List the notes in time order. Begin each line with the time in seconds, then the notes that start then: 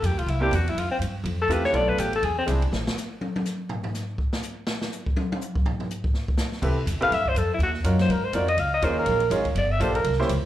0.02 F2 G4, hi-hat pedal, ride
0.11 D2
0.18 A#1 F4, ride
0.26 C2 E4, ride
0.40 A#3 C4 D4 E4 G4
0.51 E2 F#4, hi-hat pedal, ride
0.67 E4, ride
0.75 F2, ride
0.79 F4
0.90 C4, muted upright bass stroke
0.99 G2, hi-hat pedal, ride
1.24 F2, ride
1.42 A4
1.48 E2 A3 C4 E4 F4 G4, hi-hat pedal, ride
1.52 B4
1.64 C#5, snare
1.73 B1 A3 B3 D4 F4 A4 D5, ride
1.88 B4, kick
1.98 A1 G4, hi-hat pedal, ride
2.13 A4, ride
2.22 E2 G#4, ride
2.38 C4
2.46 C2 G#3 C4 D4 E4 G#4, hi-hat pedal, ride
2.62 ride
2.72 A1, snare
2.87 snare
2.97 snare, hi-hat pedal
3.21 high tom
3.36 high tom
3.45 snare, hi-hat pedal
3.69 floor tom
3.84 floor tom
3.94 snare, hi-hat pedal
4.18 kick
4.33 snare
4.42 hi-hat pedal
4.67 snare
4.81 snare
4.92 hi-hat pedal
5.06 kick
5.17 high tom
5.32 high tom
5.41 hi-hat pedal
5.55 kick
5.66 floor tom
5.80 floor tom
5.90 hi-hat pedal
6.04 kick
6.14 snare
6.28 kick
6.38 snare, hi-hat pedal
6.52 snare
6.62 C2 C4 E4 G4 A4 B4, kick, crash
6.86 E2, hi-hat pedal, ride
6.93 C2
7.01 A1 C4 E4 G4 A4 B4 F5, ride
7.10 G2, snare, ride
7.14 E5
7.26 C5, kick
7.34 F2 A4, hi-hat pedal, ride
7.54 E4
7.59 D#2, ride
7.63 F#4
7.74 snare
7.84 F#2 C#4 D#4 F4 F#4 A#4, hi-hat pedal, ride
7.99 C5, snare, ride
8.09 G#2 A#4, ride
8.25 C5
8.33 F2 C4 D#4 F4 F#4 A#4 D5, hi-hat pedal, ride
8.48 D#5, ride
8.57 C#2 F5, ride
8.74 D#5
8.82 D#2 C#4 D#4 F4 G#4 A#4 C5, hi-hat pedal, ride
8.99 A#4
9.06 A#1, ride
9.20 ride
9.30 G#1 C#4 D#4 F4 G#4 C#5, hi-hat pedal, ride
9.45 kick, ride
9.55 G1 D5, ride
9.72 E5
9.80 A#1 A#3 D4 F4 G4 A4 C5, hi-hat pedal, ride
9.95 A#4, ride
10.04 C2, ride
10.12 snare
10.19 A#3 C#4 E4 G4 C5, snare
10.29 C#2, hi-hat pedal, ride